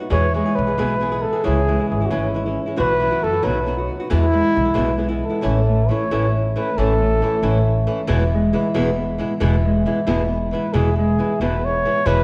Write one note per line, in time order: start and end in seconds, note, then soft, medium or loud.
0.00 0.80 B3 medium
0.00 0.09 B3 soft
0.00 1.01 C#4 medium
0.00 0.10 D#4 soft
0.00 0.10 F#4 soft
0.10 0.25 E2 medium
0.10 0.41 E2 medium
0.10 0.26 B2 medium
0.10 0.26 E3 medium
0.10 0.57 E3 medium
0.10 0.26 G#3 medium
0.10 0.26 B3 medium
0.10 0.26 G#4 medium
0.10 0.34 C#5 loud
0.34 0.46 E3 medium
0.34 0.46 G#3 medium
0.34 1.51 G#3 medium
0.34 0.45 B3 medium
0.34 0.44 G#4 soft
0.34 0.56 C#5 medium
0.45 0.60 E3 soft
0.45 0.60 G#3 soft
0.45 0.60 B3 soft
0.45 0.59 G#4 soft
0.55 0.72 B1 medium
0.55 1.45 E3 medium
0.55 1.24 B4 loud
0.66 0.77 E3 soft
0.66 0.77 G#3 soft
0.66 0.78 B3 soft
0.66 0.77 G#4 soft
0.78 1.23 B1 medium
0.78 0.93 E2 medium
0.78 0.93 B2 medium
0.78 0.93 E3 medium
0.78 0.93 G#3 medium
0.78 0.93 B3 medium
0.78 3.46 B3 medium
0.78 0.93 G#4 medium
1.01 1.12 E3 medium
1.01 1.11 G#3 medium
1.01 1.10 B3 medium
1.01 1.10 G#4 medium
1.11 1.27 E3 soft
1.11 1.26 G#3 soft
1.11 1.26 B3 soft
1.11 1.26 G#4 soft
1.22 1.45 A4 medium
1.33 1.43 E3 soft
1.33 1.43 G#3 soft
1.33 1.44 B3 soft
1.33 1.45 G#4 soft
1.44 1.76 C#2 medium
1.44 1.60 C#3 medium
1.44 1.59 E3 medium
1.44 1.90 E3 medium
1.44 1.60 G#3 medium
1.44 1.60 C#4 medium
1.44 1.60 E4 medium
1.44 1.88 G#4 loud
1.68 1.80 E3 soft
1.68 1.80 G#3 medium
1.68 2.84 G#3 medium
1.68 1.80 C#4 medium
1.68 1.78 E4 medium
1.80 1.94 G#3 soft
1.80 1.94 C#4 soft
1.80 1.93 E4 medium
1.89 2.05 G#1 medium
1.89 2.79 E3 medium
1.89 2.07 G#4 medium
2.00 2.10 G#3 soft
2.00 2.11 C#4 soft
2.00 2.11 E4 soft
2.06 2.14 F#4 medium
2.10 2.56 G#1 medium
2.10 2.26 C#3 medium
2.10 2.26 E3 medium
2.10 2.26 G#3 medium
2.10 2.27 C#4 medium
2.10 5.02 C#4 medium
2.10 2.27 E4 medium
2.10 2.63 E4 medium
2.34 2.46 E3 soft
2.34 2.46 G#3 soft
2.34 2.45 C#4 medium
2.34 2.44 E4 medium
2.46 2.60 G#3 soft
2.46 2.59 C#4 medium
2.46 2.59 E4 soft
2.66 2.77 G#3 soft
2.66 2.77 C#4 soft
2.66 2.77 E4 soft
2.76 3.09 B1 medium
2.76 2.92 B2 medium
2.76 2.92 E3 medium
2.76 3.23 E3 medium
2.76 2.93 B3 medium
2.76 2.93 E4 medium
2.76 2.93 F#4 medium
2.76 3.25 B4 loud
3.00 3.12 E3 medium
3.00 3.50 F#3 medium
3.00 3.11 B3 medium
3.00 3.11 E4 medium
3.00 3.10 F#4 medium
3.11 3.26 B3 soft
3.11 3.26 E4 soft
3.11 3.25 F#4 medium
3.24 3.38 F#2 medium
3.24 3.50 E3 medium
3.24 3.46 A4 medium
3.32 3.42 B3 soft
3.32 3.43 E4 soft
3.32 3.42 F#4 soft
3.42 3.88 B1 medium
3.42 3.58 B2 medium
3.42 3.58 F#3 medium
3.42 3.58 B3 medium
3.42 4.77 B3 medium
3.42 3.59 D#4 medium
3.42 3.58 F#4 medium
3.42 3.89 B4 medium
3.66 3.78 F#3 soft
3.66 3.78 B3 medium
3.66 3.78 D#4 medium
3.66 3.77 F#4 medium
3.78 3.92 B3 soft
3.78 3.92 D#4 medium
3.78 3.91 F#4 soft
4.00 4.09 B3 soft
4.00 4.10 D#4 soft
4.00 4.10 F#4 soft
4.10 4.24 E2 medium
4.10 4.41 E2 medium
4.10 4.24 B2 medium
4.10 4.24 E3 medium
4.10 4.54 E3 medium
4.10 4.25 G#3 medium
4.10 4.25 B3 medium
4.10 4.25 E4 medium
4.10 4.98 E4 loud
4.32 4.43 E3 medium
4.32 4.43 G#3 medium
4.32 5.50 G#3 medium
4.32 4.42 B3 soft
4.32 4.43 E4 medium
4.43 4.58 E3 soft
4.43 4.57 G#3 soft
4.43 4.57 B3 medium
4.43 4.57 E4 soft
4.55 4.70 B1 medium
4.55 5.43 E3 medium
4.65 4.74 E3 soft
4.65 4.74 G#3 soft
4.65 4.74 B3 soft
4.65 4.74 E4 soft
4.74 5.21 B1 medium
4.74 4.90 E2 medium
4.74 4.90 B2 medium
4.74 4.91 E3 medium
4.74 4.90 G#3 medium
4.74 4.90 B3 medium
4.74 7.88 B3 medium
4.74 4.91 E4 medium
4.98 5.09 E3 medium
4.98 5.09 G#3 medium
4.98 5.08 B3 medium
4.98 5.07 E4 medium
5.09 5.24 E3 soft
5.09 5.24 G#3 soft
5.09 5.24 B3 medium
5.09 5.23 E4 medium
5.24 5.92 A4 medium
5.30 5.41 E3 soft
5.30 5.43 G#3 soft
5.30 5.43 B3 soft
5.30 5.42 E4 soft
5.41 5.89 A1 loud
5.41 5.58 A2 medium
5.41 5.58 E3 medium
5.41 5.89 E3 medium
5.41 5.58 A3 medium
5.41 5.58 C#4 medium
5.41 5.58 E4 medium
5.68 7.01 A3 medium
5.89 6.03 E3 medium
5.89 6.77 E3 medium
5.89 6.04 A3 medium
5.89 6.04 C#4 medium
5.89 6.04 E4 medium
5.89 6.36 C#5 loud
6.11 6.55 A1 medium
6.11 6.26 A2 medium
6.11 6.26 E3 medium
6.11 6.26 A3 medium
6.11 7.44 C#4 medium
6.11 6.27 C#4 medium
6.11 6.26 E4 medium
6.56 6.69 E3 medium
6.56 6.70 A3 medium
6.56 6.69 C#4 medium
6.56 6.70 E4 medium
6.56 6.79 B4 medium
6.78 7.20 A1 loud
6.78 6.92 A2 medium
6.78 7.22 E3 medium
6.78 6.92 E3 medium
6.78 6.92 A3 medium
6.78 6.92 C#4 medium
6.78 6.93 E4 medium
6.78 7.88 A4 medium
7.01 8.41 A3 medium
7.22 7.35 E3 medium
7.22 8.09 E3 medium
7.22 7.35 A3 medium
7.22 7.36 C#4 medium
7.22 7.36 E4 medium
7.42 7.85 A1 medium
7.42 7.57 A2 medium
7.42 7.57 E3 medium
7.42 7.57 A3 medium
7.42 7.58 C#4 medium
7.42 10.35 C#4 medium
7.42 7.58 E4 medium
7.87 8.00 E3 medium
7.87 8.00 A3 medium
7.87 8.01 C#4 medium
7.87 8.01 E4 medium
8.07 8.52 E1 loud
8.07 8.23 E2 medium
8.07 8.22 B2 loud
8.07 8.22 E3 loud
8.07 8.54 E3 medium
8.07 8.23 G#3 loud
8.07 8.23 B3 loud
8.07 8.23 E4 loud
8.35 9.64 G#3 medium
8.53 8.66 E3 medium
8.53 9.41 E3 medium
8.53 8.66 G#3 medium
8.53 8.67 B3 medium
8.53 8.67 E4 medium
8.74 9.18 E1 medium
8.74 8.89 E2 medium
8.74 8.89 B2 loud
8.74 8.89 E3 medium
8.74 8.90 G#3 medium
8.74 8.90 B3 loud
8.74 10.08 B3 medium
8.74 8.89 E4 medium
9.18 9.32 E3 medium
9.18 9.33 G#3 medium
9.18 9.33 B3 medium
9.18 9.33 E4 medium
9.40 9.84 E1 loud
9.40 9.55 E2 medium
9.40 9.55 B2 medium
9.40 9.55 E3 loud
9.40 9.85 E3 medium
9.40 9.55 G#3 loud
9.40 9.56 B3 loud
9.40 9.55 E4 loud
9.66 10.98 G#3 medium
9.86 9.99 E3 medium
9.86 10.75 E3 medium
9.86 9.99 G#3 medium
9.86 9.99 B3 medium
9.86 9.99 E4 medium
10.07 10.51 E1 medium
10.07 10.21 E2 medium
10.07 10.22 B2 medium
10.07 10.22 E3 medium
10.07 10.22 G#3 medium
10.07 10.22 B3 loud
10.07 11.41 B3 medium
10.07 10.22 E4 medium
10.52 10.66 E3 medium
10.52 10.66 G#3 medium
10.52 10.66 B3 medium
10.52 10.67 E4 medium
10.52 10.75 B4 medium
10.73 11.18 E1 loud
10.73 10.88 E2 medium
10.73 10.88 B2 medium
10.73 10.89 E3 medium
10.73 11.19 E3 medium
10.73 10.89 G#3 medium
10.73 10.89 B3 medium
10.73 10.89 E4 medium
10.73 10.97 G#4 medium
10.97 12.24 G#3 medium
10.97 11.38 G#4 medium
11.18 11.32 E3 soft
11.18 12.07 E3 medium
11.18 11.33 G#3 medium
11.18 11.33 B3 medium
11.18 11.33 E4 medium
11.40 11.83 E1 medium
11.40 11.55 E2 medium
11.40 11.55 B2 medium
11.40 11.55 E3 medium
11.40 11.56 G#3 medium
11.40 12.24 B3 medium
11.40 11.55 B3 medium
11.40 11.55 E4 medium
11.40 11.67 B4 medium
11.65 12.08 C#5 loud
11.85 11.98 E3 medium
11.85 11.98 G#3 medium
11.85 11.99 B3 medium
11.85 11.99 E4 medium
12.06 12.24 E1 medium
12.06 12.20 E2 medium
12.06 12.20 B2 medium
12.06 12.21 E3 medium
12.06 12.24 E3 medium
12.06 12.20 G#3 medium
12.06 12.21 B3 medium
12.06 12.21 E4 medium
12.06 12.24 B4 loud